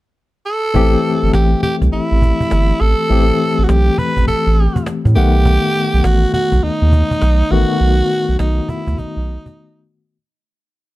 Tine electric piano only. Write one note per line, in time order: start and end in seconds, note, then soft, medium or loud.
0.74 3.05 E3 medium
0.74 3.06 A3 medium
0.74 3.06 C4 medium
0.74 3.07 G4 medium
3.09 5.11 E3 medium
3.09 5.12 A3 medium
3.09 5.12 C4 medium
3.09 5.13 G4 medium
5.15 7.47 D#3 medium
5.15 7.47 A3 medium
5.15 7.48 B3 medium
5.15 7.48 F#5 medium
7.50 9.82 D#3 medium
7.50 9.82 A3 medium
7.50 9.83 B3 medium
7.50 9.83 F#4 medium